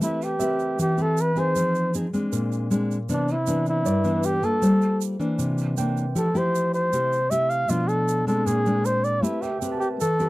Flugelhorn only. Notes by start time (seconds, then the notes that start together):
0.03 E4
0.24 G4
0.81 G4
1.02 A4
1.21 B4
1.39 C5
3.13 D4
3.32 E4
3.69 E4
4.25 G4
4.45 A4
6.18 A4
6.38 C5
6.74 C5
7.30 E5
7.50 F5
7.70 F4
7.89 A4
8.28 A4
8.46 G#4
8.86 C5
9.04 D5
9.23 E4
9.42 G4
9.61 G4
9.80 G4
10.01 A4